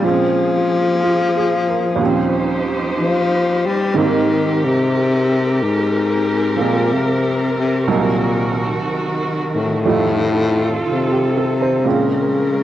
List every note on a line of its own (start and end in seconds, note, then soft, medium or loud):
0.00 1.96 A#2 soft
0.00 1.98 F3 soft
0.00 1.95 A#3 soft
0.05 2.81 F3 medium
0.05 2.00 F3 medium
0.05 2.01 G#3 soft
0.05 2.02 C4 soft
0.05 1.99 G#4 medium
0.11 2.03 C#4 soft
1.03 1.65 F4 soft
1.36 1.86 G#4 soft
1.69 2.19 A#4 soft
1.96 3.93 D#2 soft
1.96 3.94 A#2 soft
1.96 3.95 F3 soft
2.02 3.95 F3 medium
2.02 3.94 G3 soft
2.02 3.96 C4 soft
2.02 3.99 C#4 soft
2.02 3.95 D#4 soft
2.02 7.85 G4 medium
2.02 3.95 C5 medium
3.01 3.67 F3 medium
3.66 3.99 G3 medium
3.94 7.87 G#2 soft
3.94 7.87 D#3 soft
3.94 4.67 D#3 medium
3.94 7.88 G3 soft
3.94 7.89 A#3 medium
3.94 9.83 C4 medium
3.94 6.58 C4 medium
3.94 9.83 A#4 medium
4.65 5.64 C3 medium
5.62 6.63 G#2 medium
6.57 7.87 F3 soft
6.57 7.88 G#3 soft
6.57 7.89 C4 soft
6.61 6.94 A#2 medium
6.93 7.57 C3 medium
7.58 7.91 C3 medium
7.86 9.86 C2 soft
7.86 8.87 A#2 medium
7.86 9.86 C3 soft
7.86 11.81 D#3 medium
7.86 9.86 F#3 soft
7.86 9.85 D#4 soft
7.86 9.83 F#4 medium
7.86 9.86 A#4 soft
9.55 10.83 A2 loud
9.85 11.85 F2 soft
9.85 11.84 F3 soft
9.85 11.86 G3 soft
9.85 11.86 A3 soft
9.85 11.83 C4 soft
9.85 11.86 D#4 soft
9.85 11.83 F4 medium
9.85 11.84 A4 medium
10.87 11.89 C3 medium
10.87 11.33 F4 soft
11.12 11.54 G4 soft
11.37 11.67 A4 soft
11.62 11.96 C5 soft
11.84 12.63 A#2 soft
11.84 12.63 C#3 medium
11.84 12.63 F3 soft
11.84 12.63 G#3 soft
11.84 12.63 G#3 medium
11.84 12.63 C4 soft
11.84 12.63 A#4 medium
11.88 12.63 F4 soft